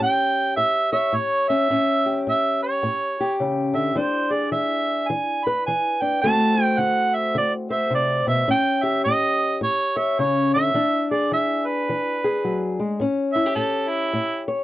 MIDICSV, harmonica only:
0, 0, Header, 1, 2, 480
1, 0, Start_track
1, 0, Tempo, 563910
1, 1454, Time_signature, 4, 2, 24, 8
1, 12460, End_track
2, 0, Start_track
2, 0, Title_t, "Harmonica"
2, 0, Program_c, 0, 22
2, 20, Note_on_c, 0, 79, 104
2, 463, Note_off_c, 0, 79, 0
2, 480, Note_on_c, 0, 76, 99
2, 763, Note_off_c, 0, 76, 0
2, 783, Note_on_c, 0, 76, 88
2, 977, Note_on_c, 0, 73, 86
2, 990, Note_off_c, 0, 76, 0
2, 1257, Note_off_c, 0, 73, 0
2, 1262, Note_on_c, 0, 76, 91
2, 1896, Note_off_c, 0, 76, 0
2, 1951, Note_on_c, 0, 76, 87
2, 2220, Note_off_c, 0, 76, 0
2, 2236, Note_on_c, 0, 73, 76
2, 2863, Note_off_c, 0, 73, 0
2, 3188, Note_on_c, 0, 76, 84
2, 3381, Note_on_c, 0, 72, 97
2, 3393, Note_off_c, 0, 76, 0
2, 3669, Note_on_c, 0, 74, 84
2, 3682, Note_off_c, 0, 72, 0
2, 3842, Note_off_c, 0, 74, 0
2, 3847, Note_on_c, 0, 76, 90
2, 4329, Note_on_c, 0, 80, 97
2, 4341, Note_off_c, 0, 76, 0
2, 4632, Note_on_c, 0, 83, 93
2, 4644, Note_off_c, 0, 80, 0
2, 4815, Note_off_c, 0, 83, 0
2, 4822, Note_on_c, 0, 80, 96
2, 5121, Note_on_c, 0, 79, 87
2, 5134, Note_off_c, 0, 80, 0
2, 5288, Note_off_c, 0, 79, 0
2, 5293, Note_on_c, 0, 81, 115
2, 5642, Note_off_c, 0, 81, 0
2, 5642, Note_on_c, 0, 79, 115
2, 5784, Note_on_c, 0, 78, 100
2, 5796, Note_off_c, 0, 79, 0
2, 6086, Note_on_c, 0, 76, 88
2, 6099, Note_off_c, 0, 78, 0
2, 6263, Note_off_c, 0, 76, 0
2, 6280, Note_on_c, 0, 74, 87
2, 6409, Note_off_c, 0, 74, 0
2, 6562, Note_on_c, 0, 76, 82
2, 6729, Note_off_c, 0, 76, 0
2, 6764, Note_on_c, 0, 74, 89
2, 7028, Note_off_c, 0, 74, 0
2, 7050, Note_on_c, 0, 76, 88
2, 7213, Note_off_c, 0, 76, 0
2, 7239, Note_on_c, 0, 79, 110
2, 7517, Note_on_c, 0, 76, 90
2, 7529, Note_off_c, 0, 79, 0
2, 7691, Note_off_c, 0, 76, 0
2, 7696, Note_on_c, 0, 75, 94
2, 8142, Note_off_c, 0, 75, 0
2, 8201, Note_on_c, 0, 73, 91
2, 8487, Note_on_c, 0, 76, 81
2, 8499, Note_off_c, 0, 73, 0
2, 8675, Note_on_c, 0, 73, 90
2, 8687, Note_off_c, 0, 76, 0
2, 8962, Note_off_c, 0, 73, 0
2, 8971, Note_on_c, 0, 76, 99
2, 9409, Note_off_c, 0, 76, 0
2, 9458, Note_on_c, 0, 74, 81
2, 9616, Note_off_c, 0, 74, 0
2, 9646, Note_on_c, 0, 76, 89
2, 9923, Note_on_c, 0, 71, 86
2, 9936, Note_off_c, 0, 76, 0
2, 10877, Note_off_c, 0, 71, 0
2, 11346, Note_on_c, 0, 76, 90
2, 11526, Note_off_c, 0, 76, 0
2, 11535, Note_on_c, 0, 69, 81
2, 11818, Note_on_c, 0, 64, 89
2, 11831, Note_off_c, 0, 69, 0
2, 12289, Note_off_c, 0, 64, 0
2, 12460, End_track
0, 0, End_of_file